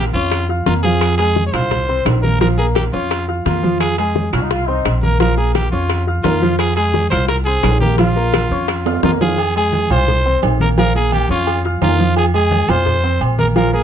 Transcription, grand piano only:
0.15 0.43 C#4 medium
0.15 0.43 C#5 medium
0.15 0.44 C#6 medium
0.49 0.64 F4 medium
0.49 0.64 F5 medium
0.49 0.64 F6 medium
0.67 0.81 A#3 medium
0.67 0.81 A#4 medium
0.67 0.81 A#5 medium
0.84 1.13 F3 medium
0.84 1.13 F4 medium
0.84 1.13 F5 medium
1.19 1.48 G#3 medium
1.19 1.48 G#4 medium
1.19 1.48 G#5 medium
1.54 1.82 F4 medium
1.54 1.83 F5 medium
1.54 1.83 F6 medium
1.89 2.17 C4 medium
1.89 2.17 C5 medium
1.89 2.18 C6 medium
2.24 2.38 A#3 medium
2.24 2.38 A#4 medium
2.24 2.38 A#5 medium
2.41 2.55 F3 medium
2.41 2.55 F4 medium
2.41 2.56 F5 medium
2.59 2.87 A#3 medium
2.59 2.87 A#4 medium
2.59 2.87 A#5 medium
2.93 3.22 C#4 medium
2.93 3.22 C#5 medium
2.93 3.22 C#6 medium
3.28 3.42 F4 medium
3.28 3.43 F5 medium
3.28 3.43 F6 medium
3.46 3.60 A#3 medium
3.46 3.60 A#4 medium
3.46 3.60 A#5 medium
3.63 3.92 F3 medium
3.63 3.92 F4 medium
3.63 3.92 F5 medium
3.98 4.27 G#3 medium
3.98 4.27 G#4 medium
3.98 4.27 G#5 medium
4.33 4.61 F4 medium
4.33 4.62 F5 medium
4.33 4.62 F6 medium
4.68 4.96 C4 medium
4.68 4.97 C5 medium
4.68 4.97 C6 medium
5.03 5.17 A#3 medium
5.03 5.17 A#4 medium
5.03 5.18 A#5 medium
5.20 5.35 F3 medium
5.20 5.35 F4 medium
5.20 5.35 F5 medium
5.37 5.66 A#3 medium
5.37 5.66 A#4 medium
5.37 5.66 A#5 medium
5.73 6.01 C#4 medium
5.73 6.01 C#5 medium
5.73 6.01 C#6 medium
6.07 6.22 F4 medium
6.07 6.22 F5 medium
6.07 6.22 F6 medium
6.25 6.39 A#3 medium
6.25 6.39 A#4 medium
6.25 6.39 A#5 medium
6.42 6.71 F3 medium
6.42 6.71 F4 medium
6.42 6.71 F5 medium
6.77 7.06 G#3 medium
6.77 7.06 G#4 medium
6.77 7.06 G#5 medium
7.12 7.40 F4 medium
7.12 7.41 F5 medium
7.12 7.41 F6 medium
7.47 7.75 C4 medium
7.47 7.75 C5 medium
7.47 7.76 C6 medium
7.81 7.96 A#3 medium
7.81 7.96 A#4 medium
7.81 7.96 A#5 medium
7.99 8.13 F3 medium
7.99 8.13 F4 medium
7.99 8.14 F5 medium
8.16 8.45 A#3 medium
8.16 8.45 A#4 medium
8.16 8.45 A#5 medium
8.51 8.80 C#4 medium
8.51 8.80 C#5 medium
8.51 8.80 C#6 medium
8.86 9.00 F4 medium
8.86 9.00 F5 medium
8.86 9.01 F6 medium
9.04 9.18 A#3 medium
9.04 9.18 A#4 medium
9.04 9.18 A#5 medium
9.21 9.35 F3 medium
9.21 9.36 F4 medium
9.21 9.36 F5 medium
9.56 9.84 G#3 medium
9.56 9.85 G#4 medium
9.56 9.85 G#5 medium
9.91 10.19 F4 medium
9.91 10.19 F5 medium
9.91 10.19 F6 medium
10.25 10.54 C4 medium
10.25 10.54 C5 medium
10.25 10.54 C6 medium
10.61 10.75 A#3 medium
10.61 10.75 A#4 medium
10.61 10.75 A#5 medium
10.78 10.92 F3 medium
10.78 10.92 F4 medium
10.78 10.92 F5 medium
10.95 11.24 A#3 medium
10.95 11.24 A#4 medium
10.95 11.24 A#5 medium
11.30 11.59 C#4 medium
11.30 11.59 C#5 medium
11.30 11.59 C#6 medium
11.65 11.79 F4 medium
11.65 11.79 F5 medium
11.65 11.80 F6 medium
11.82 11.96 A#3 medium
11.82 11.96 A#4 medium
11.82 11.96 A#5 medium
11.99 12.28 F3 medium
11.99 12.28 F4 medium
11.99 12.28 F5 medium
12.34 12.62 G#3 medium
12.34 12.63 G#4 medium
12.34 12.63 G#5 medium
12.69 12.97 F4 medium
12.69 12.98 F5 medium
12.69 12.98 F6 medium
13.03 13.32 C4 medium
13.03 13.32 C5 medium
13.03 13.32 C6 medium
13.38 13.53 A#3 medium
13.38 13.53 A#4 medium
13.38 13.53 A#5 medium
13.56 13.70 F3 medium
13.56 13.70 F4 medium
13.56 13.70 F5 loud
13.73 13.83 A#3 medium
13.73 13.83 A#4 medium
13.73 13.83 A#5 medium

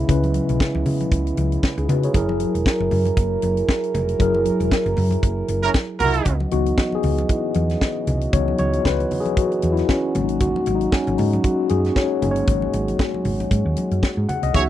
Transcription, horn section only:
5.62 5.70 C#4 medium
5.62 5.70 E4 medium
5.62 5.70 A#4 medium
5.99 6.34 E4 loud
5.99 6.34 F#4 loud
5.99 6.34 A#4 loud
14.54 14.63 F#4 medium
14.54 14.63 G#4 medium
14.54 14.63 C#5 loud

